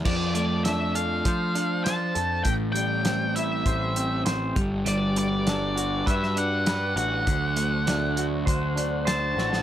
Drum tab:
CC |x---------------|----------------|----------------|----------------|
HH |--x-x-x-x-x-x-x-|x-x-x-x-x-x-x-x-|x-x-x-x-x-x-x-x-|x-x-x-x-x-x-x---|
SD |----o-------o---|----o-------o---|----o----o--o---|----o-------o-oo|
BD |o-------o-------|o-------o-----o-|--------o-------|o-------o-------|